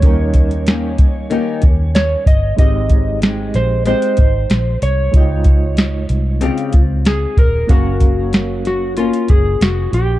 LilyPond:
<<
  \new Staff \with { instrumentName = "Electric slide guitar" } { \time 4/4 \key aes \major \tempo 4 = 94 des''2. des''8 ees''8 | ees''4 r8 c''8 c''4. des''8~ | des''4. r4. aes'8 bes'8 | ges'4. ges'8 f'8 aes'8 ges'8 g'8 | }
  \new Staff \with { instrumentName = "Reed electric piano" } { \time 4/4 \key aes \major <g des' ees' bes'>1 | <aes ees' g' ees''>1 | <aes ees' f' ees''>1 | <bes des' bes' f''>1 | }
  \new Staff \with { instrumentName = "Nylon-string guitar" } { \time 4/4 \key aes \major <ees bes des' g'>4 <ees bes des' g'>4 <ees bes des' g'>8 <bes des' g'>4. | <aes c' ees' g'>4 <aes c' ees' g'>4 <aes c' ees' g'>8 <ees' g'>4. | <f' g'>2 <des c' f' g'>8 <c' f'>4. | <ges bes des'>2 <bes des'>2 | }
  \new Staff \with { instrumentName = "Fingered electric bass" } { \clef bass \time 4/4 \key aes \major ees,4. des,8. r16 ees,4 g,,8 | aes,,4. bes,,8. r16 aes,,8 bes,,8 c,8 | des,4. c,8. r16 des,4 ees,,8 | ges,,2~ ges,,16 r16 ges,,8 f,,8 bes,,8 | }
  \new DrumStaff \with { instrumentName = "Drums" } \drummode { \time 4/4 <hh bd>8 <hh bd>16 hh16 <hh sn>8 <hh bd>8 hh8 <hh bd>8 <hh sn>8 <hh bd>8 | <hh bd>8 <hh bd>8 <hh sn>8 <hh sn>8 hh16 hh16 <hh bd>8 <hh sn>8 hh8 | <hh bd>8 <hh bd>8 <hh sn>8 hh8 hh16 hh16 <hh bd>8 <hh sn>8 <hh bd>8 | <hh bd>8 <hh bd>8 <hh sn>8 <hh sn>8 hh16 hh16 <hh bd>8 <hh sn>8 hh8 | }
>>